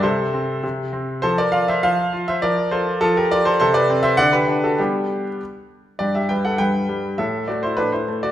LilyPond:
<<
  \new Staff \with { instrumentName = "Grand piano" } { \time 2/4 \key f \major \tempo 4 = 101 <a' c''>4 r4 | <a' c''>16 <bes' d''>16 <d'' f''>16 <c'' e''>16 <c'' f''>8. <c'' e''>16 | <bes' d''>8 <a' c''>8 <f' a'>16 <g' bes'>16 <bes' d''>16 <a' c''>16 | \key g \major <a' c''>16 <b' d''>8 <c'' e''>16 <d'' fis''>16 <g' b'>8 <fis' a'>16 |
<d' g'>4 r4 | <g' d''>16 <g' e''>16 <b' g''>16 <a' fis''>16 <b' g''>4 | <a' e''>8 <fis' d''>16 <e' c''>16 <d' b'>16 <e' c''>8 <fis' d''>16 | }
  \new Staff \with { instrumentName = "Grand piano" } { \clef bass \time 2/4 \key f \major c8 c'8 c8 c'8 | f8 f'8 f8 f'8 | f8 f'8 f8 f'8 | \key g \major c8 c'8 d8 d'8 |
<g b>4 r4 | g,8 g8 g,8 g8 | a,8 a8 a,8 a8 | }
>>